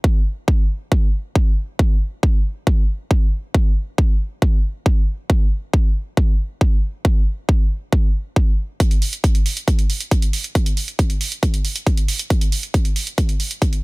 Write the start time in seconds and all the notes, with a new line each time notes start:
0.04 kick
0.48 kick
0.92 kick
1.35 kick
1.79 kick
2.23 kick
2.67 kick
3.11 kick
3.54 kick
3.98 kick
4.42 kick
4.86 kick
5.30 kick
5.73 kick
6.17 kick
6.61 kick
7.05 kick
7.49 kick
7.92 kick
8.36 kick
8.80 kick, closed hi-hat
8.91 closed hi-hat
9.02 open hi-hat
9.13 closed hi-hat
9.24 kick, closed hi-hat
9.35 closed hi-hat
9.46 open hi-hat
9.57 closed hi-hat
9.68 kick, closed hi-hat
9.79 closed hi-hat
9.90 open hi-hat
10.01 closed hi-hat
10.11 kick, closed hi-hat
10.22 closed hi-hat
10.33 open hi-hat
10.44 closed hi-hat
10.55 kick, closed hi-hat
10.66 closed hi-hat
10.77 open hi-hat
10.88 closed hi-hat
10.99 kick, closed hi-hat
11.10 closed hi-hat
11.21 open hi-hat
11.32 closed hi-hat
11.43 kick, closed hi-hat
11.54 closed hi-hat
11.65 open hi-hat
11.76 closed hi-hat
11.87 kick, closed hi-hat
11.97 closed hi-hat
12.08 open hi-hat
12.19 closed hi-hat
12.30 kick, closed hi-hat
12.41 closed hi-hat
12.52 open hi-hat
12.63 closed hi-hat
12.74 kick, closed hi-hat
12.85 closed hi-hat
12.96 open hi-hat
13.07 closed hi-hat
13.18 kick, closed hi-hat
13.29 closed hi-hat
13.40 open hi-hat
13.51 closed hi-hat
13.62 kick, closed hi-hat
13.73 closed hi-hat